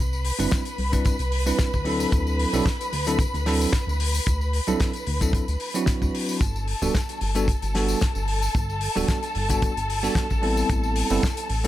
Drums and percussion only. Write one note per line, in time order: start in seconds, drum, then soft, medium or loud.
0.13 tambourine soft
0.25 open hi-hat loud
0.40 tambourine medium
0.51 kick loud
0.51 snare loud
0.51 tambourine medium
0.65 closed hi-hat medium
0.65 tambourine soft
0.78 open hi-hat medium
0.93 kick medium
0.93 closed hi-hat medium
0.93 tambourine medium
1.05 kick loud
1.05 closed hi-hat medium
1.05 tambourine medium
1.19 closed hi-hat medium
1.19 tambourine soft
1.32 open hi-hat loud
1.47 tambourine medium
1.59 kick loud
1.59 snare loud
1.59 closed hi-hat medium
1.59 tambourine medium
1.73 kick medium
1.73 tambourine soft
1.85 open hi-hat loud
2.00 tambourine medium
2.12 kick loud
2.12 closed hi-hat medium
2.12 tambourine medium
2.27 tambourine soft
2.39 open hi-hat loud
2.54 tambourine medium
2.66 kick loud
2.66 snare loud
2.66 tambourine medium
2.81 closed hi-hat medium
2.81 tambourine soft
2.93 open hi-hat loud
3.07 closed hi-hat medium
3.07 tambourine medium
3.19 kick loud
3.19 closed hi-hat medium
3.19 tambourine medium
3.34 closed hi-hat soft
3.34 tambourine soft
3.46 snare medium
3.46 open hi-hat loud
3.61 tambourine medium
3.73 kick loud
3.73 snare loud
3.73 closed hi-hat medium
3.73 tambourine medium
3.89 tambourine soft
4.00 open hi-hat loud
4.15 tambourine medium
4.26 kick loud
4.26 closed hi-hat medium
4.26 tambourine medium
4.41 tambourine soft
4.53 open hi-hat loud
4.67 closed hi-hat medium
4.67 tambourine medium
4.80 kick loud
4.80 snare loud
4.80 closed hi-hat medium
4.80 tambourine medium
4.93 closed hi-hat medium
4.93 tambourine soft
5.06 open hi-hat loud
5.21 kick medium
5.21 closed hi-hat medium
5.21 tambourine medium
5.33 kick loud
5.33 closed hi-hat medium
5.33 tambourine medium
5.48 closed hi-hat soft
5.48 tambourine soft
5.60 open hi-hat loud
5.75 closed hi-hat soft
5.75 tambourine medium
5.86 kick loud
5.86 snare loud
5.86 closed hi-hat medium
5.86 tambourine medium
6.02 kick medium
6.02 tambourine soft
6.15 open hi-hat loud
6.29 tambourine medium
6.41 kick loud
6.41 closed hi-hat medium
6.41 tambourine medium
6.56 tambourine soft
6.68 open hi-hat medium
6.82 tambourine medium
6.95 kick loud
6.95 snare loud
6.95 closed hi-hat medium
6.95 tambourine medium
7.09 closed hi-hat medium
7.09 tambourine soft
7.21 open hi-hat medium
7.35 closed hi-hat medium
7.35 tambourine medium
7.48 kick loud
7.48 closed hi-hat medium
7.48 tambourine medium
7.62 closed hi-hat medium
7.62 tambourine soft
7.75 snare medium
7.75 open hi-hat loud
7.88 tambourine medium
8.01 kick loud
8.01 snare loud
8.01 closed hi-hat medium
8.01 tambourine medium
8.15 tambourine soft
8.28 open hi-hat medium
8.42 tambourine medium
8.55 kick loud
8.55 closed hi-hat medium
8.55 tambourine medium
8.70 tambourine soft
8.81 open hi-hat medium
8.97 tambourine medium
9.08 kick loud
9.08 snare loud
9.08 closed hi-hat medium
9.08 tambourine medium
9.23 closed hi-hat medium
9.23 tambourine soft
9.35 open hi-hat medium
9.49 kick medium
9.49 closed hi-hat medium
9.49 tambourine medium
9.62 kick loud
9.62 closed hi-hat medium
9.62 tambourine medium
9.77 closed hi-hat medium
9.77 tambourine soft
9.90 open hi-hat loud
10.04 tambourine medium
10.15 kick loud
10.15 snare loud
10.15 tambourine medium
10.30 kick medium
10.30 tambourine soft
10.43 open hi-hat medium
10.57 tambourine medium
10.69 kick loud
10.69 closed hi-hat medium
10.69 tambourine medium
10.83 tambourine soft
10.96 open hi-hat loud
11.10 tambourine medium
11.23 kick loud
11.23 snare loud
11.23 closed hi-hat medium
11.23 tambourine medium
11.37 closed hi-hat medium
11.37 tambourine soft
11.49 open hi-hat medium
11.64 closed hi-hat medium